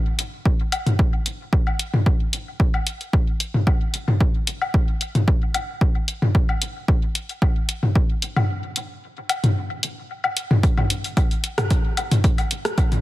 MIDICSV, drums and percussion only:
0, 0, Header, 1, 2, 480
1, 0, Start_track
1, 0, Tempo, 535714
1, 1848, Time_signature, 4, 2, 24, 8
1, 11658, End_track
2, 0, Start_track
2, 0, Title_t, "Drums"
2, 168, Note_on_c, 9, 42, 86
2, 257, Note_off_c, 9, 42, 0
2, 408, Note_on_c, 9, 36, 113
2, 497, Note_off_c, 9, 36, 0
2, 648, Note_on_c, 9, 42, 72
2, 648, Note_on_c, 9, 77, 44
2, 737, Note_off_c, 9, 42, 0
2, 737, Note_off_c, 9, 77, 0
2, 775, Note_on_c, 9, 42, 34
2, 775, Note_on_c, 9, 45, 79
2, 864, Note_off_c, 9, 45, 0
2, 865, Note_off_c, 9, 42, 0
2, 888, Note_on_c, 9, 36, 126
2, 977, Note_off_c, 9, 36, 0
2, 1128, Note_on_c, 9, 42, 85
2, 1217, Note_off_c, 9, 42, 0
2, 1368, Note_on_c, 9, 36, 126
2, 1457, Note_off_c, 9, 36, 0
2, 1495, Note_on_c, 9, 77, 44
2, 1584, Note_off_c, 9, 77, 0
2, 1608, Note_on_c, 9, 42, 72
2, 1697, Note_off_c, 9, 42, 0
2, 1735, Note_on_c, 9, 45, 86
2, 1824, Note_off_c, 9, 45, 0
2, 1848, Note_on_c, 9, 36, 116
2, 1937, Note_off_c, 9, 36, 0
2, 2088, Note_on_c, 9, 42, 85
2, 2177, Note_off_c, 9, 42, 0
2, 2328, Note_on_c, 9, 36, 112
2, 2417, Note_off_c, 9, 36, 0
2, 2455, Note_on_c, 9, 77, 43
2, 2545, Note_off_c, 9, 77, 0
2, 2568, Note_on_c, 9, 42, 68
2, 2657, Note_off_c, 9, 42, 0
2, 2695, Note_on_c, 9, 42, 32
2, 2785, Note_off_c, 9, 42, 0
2, 2808, Note_on_c, 9, 36, 124
2, 2897, Note_off_c, 9, 36, 0
2, 3048, Note_on_c, 9, 42, 82
2, 3137, Note_off_c, 9, 42, 0
2, 3175, Note_on_c, 9, 45, 75
2, 3265, Note_off_c, 9, 45, 0
2, 3287, Note_on_c, 9, 77, 44
2, 3288, Note_on_c, 9, 36, 120
2, 3377, Note_off_c, 9, 36, 0
2, 3377, Note_off_c, 9, 77, 0
2, 3528, Note_on_c, 9, 42, 74
2, 3617, Note_off_c, 9, 42, 0
2, 3655, Note_on_c, 9, 45, 84
2, 3745, Note_off_c, 9, 45, 0
2, 3768, Note_on_c, 9, 36, 114
2, 3857, Note_off_c, 9, 36, 0
2, 4008, Note_on_c, 9, 42, 81
2, 4097, Note_off_c, 9, 42, 0
2, 4135, Note_on_c, 9, 77, 46
2, 4225, Note_off_c, 9, 77, 0
2, 4248, Note_on_c, 9, 36, 114
2, 4337, Note_off_c, 9, 36, 0
2, 4488, Note_on_c, 9, 42, 63
2, 4577, Note_off_c, 9, 42, 0
2, 4615, Note_on_c, 9, 42, 31
2, 4615, Note_on_c, 9, 45, 80
2, 4705, Note_off_c, 9, 42, 0
2, 4705, Note_off_c, 9, 45, 0
2, 4728, Note_on_c, 9, 36, 114
2, 4817, Note_off_c, 9, 36, 0
2, 4968, Note_on_c, 9, 42, 81
2, 4968, Note_on_c, 9, 77, 42
2, 5057, Note_off_c, 9, 42, 0
2, 5057, Note_off_c, 9, 77, 0
2, 5208, Note_on_c, 9, 36, 116
2, 5297, Note_off_c, 9, 36, 0
2, 5448, Note_on_c, 9, 42, 68
2, 5537, Note_off_c, 9, 42, 0
2, 5575, Note_on_c, 9, 45, 86
2, 5664, Note_off_c, 9, 45, 0
2, 5688, Note_on_c, 9, 36, 117
2, 5777, Note_off_c, 9, 36, 0
2, 5815, Note_on_c, 9, 77, 41
2, 5905, Note_off_c, 9, 77, 0
2, 5928, Note_on_c, 9, 42, 85
2, 6017, Note_off_c, 9, 42, 0
2, 6168, Note_on_c, 9, 36, 103
2, 6257, Note_off_c, 9, 36, 0
2, 6408, Note_on_c, 9, 42, 66
2, 6497, Note_off_c, 9, 42, 0
2, 6535, Note_on_c, 9, 42, 30
2, 6625, Note_off_c, 9, 42, 0
2, 6647, Note_on_c, 9, 77, 42
2, 6648, Note_on_c, 9, 36, 123
2, 6737, Note_off_c, 9, 36, 0
2, 6737, Note_off_c, 9, 77, 0
2, 6888, Note_on_c, 9, 42, 76
2, 6977, Note_off_c, 9, 42, 0
2, 7015, Note_on_c, 9, 45, 75
2, 7104, Note_off_c, 9, 45, 0
2, 7128, Note_on_c, 9, 36, 120
2, 7217, Note_off_c, 9, 36, 0
2, 7368, Note_on_c, 9, 42, 68
2, 7457, Note_off_c, 9, 42, 0
2, 7495, Note_on_c, 9, 45, 88
2, 7495, Note_on_c, 9, 77, 42
2, 7584, Note_off_c, 9, 45, 0
2, 7584, Note_off_c, 9, 77, 0
2, 7848, Note_on_c, 9, 42, 82
2, 7937, Note_off_c, 9, 42, 0
2, 8327, Note_on_c, 9, 77, 43
2, 8328, Note_on_c, 9, 42, 67
2, 8417, Note_off_c, 9, 42, 0
2, 8417, Note_off_c, 9, 77, 0
2, 8455, Note_on_c, 9, 42, 32
2, 8455, Note_on_c, 9, 45, 84
2, 8545, Note_off_c, 9, 42, 0
2, 8545, Note_off_c, 9, 45, 0
2, 8808, Note_on_c, 9, 42, 83
2, 8897, Note_off_c, 9, 42, 0
2, 9175, Note_on_c, 9, 77, 43
2, 9265, Note_off_c, 9, 77, 0
2, 9288, Note_on_c, 9, 42, 67
2, 9377, Note_off_c, 9, 42, 0
2, 9415, Note_on_c, 9, 45, 92
2, 9505, Note_off_c, 9, 45, 0
2, 9528, Note_on_c, 9, 36, 124
2, 9528, Note_on_c, 9, 42, 50
2, 9617, Note_off_c, 9, 36, 0
2, 9618, Note_off_c, 9, 42, 0
2, 9655, Note_on_c, 9, 45, 99
2, 9655, Note_on_c, 9, 77, 44
2, 9744, Note_off_c, 9, 45, 0
2, 9744, Note_off_c, 9, 77, 0
2, 9768, Note_on_c, 9, 42, 82
2, 9857, Note_off_c, 9, 42, 0
2, 9895, Note_on_c, 9, 42, 40
2, 9985, Note_off_c, 9, 42, 0
2, 10008, Note_on_c, 9, 36, 112
2, 10008, Note_on_c, 9, 42, 53
2, 10008, Note_on_c, 9, 77, 43
2, 10097, Note_off_c, 9, 36, 0
2, 10097, Note_off_c, 9, 42, 0
2, 10097, Note_off_c, 9, 77, 0
2, 10135, Note_on_c, 9, 42, 29
2, 10225, Note_off_c, 9, 42, 0
2, 10248, Note_on_c, 9, 42, 68
2, 10337, Note_off_c, 9, 42, 0
2, 10375, Note_on_c, 9, 37, 81
2, 10375, Note_on_c, 9, 42, 42
2, 10375, Note_on_c, 9, 45, 101
2, 10375, Note_on_c, 9, 77, 47
2, 10464, Note_off_c, 9, 37, 0
2, 10464, Note_off_c, 9, 42, 0
2, 10464, Note_off_c, 9, 45, 0
2, 10464, Note_off_c, 9, 77, 0
2, 10487, Note_on_c, 9, 42, 53
2, 10488, Note_on_c, 9, 36, 122
2, 10577, Note_off_c, 9, 36, 0
2, 10577, Note_off_c, 9, 42, 0
2, 10727, Note_on_c, 9, 42, 82
2, 10727, Note_on_c, 9, 77, 45
2, 10817, Note_off_c, 9, 42, 0
2, 10817, Note_off_c, 9, 77, 0
2, 10855, Note_on_c, 9, 42, 42
2, 10855, Note_on_c, 9, 45, 103
2, 10944, Note_off_c, 9, 42, 0
2, 10945, Note_off_c, 9, 45, 0
2, 10967, Note_on_c, 9, 42, 53
2, 10968, Note_on_c, 9, 36, 124
2, 11057, Note_off_c, 9, 36, 0
2, 11057, Note_off_c, 9, 42, 0
2, 11095, Note_on_c, 9, 42, 30
2, 11095, Note_on_c, 9, 77, 43
2, 11185, Note_off_c, 9, 42, 0
2, 11185, Note_off_c, 9, 77, 0
2, 11208, Note_on_c, 9, 42, 73
2, 11297, Note_off_c, 9, 42, 0
2, 11335, Note_on_c, 9, 37, 67
2, 11335, Note_on_c, 9, 42, 42
2, 11425, Note_off_c, 9, 37, 0
2, 11425, Note_off_c, 9, 42, 0
2, 11448, Note_on_c, 9, 36, 127
2, 11448, Note_on_c, 9, 42, 51
2, 11448, Note_on_c, 9, 77, 45
2, 11537, Note_off_c, 9, 36, 0
2, 11537, Note_off_c, 9, 42, 0
2, 11538, Note_off_c, 9, 77, 0
2, 11575, Note_on_c, 9, 42, 29
2, 11575, Note_on_c, 9, 45, 90
2, 11658, Note_off_c, 9, 42, 0
2, 11658, Note_off_c, 9, 45, 0
2, 11658, End_track
0, 0, End_of_file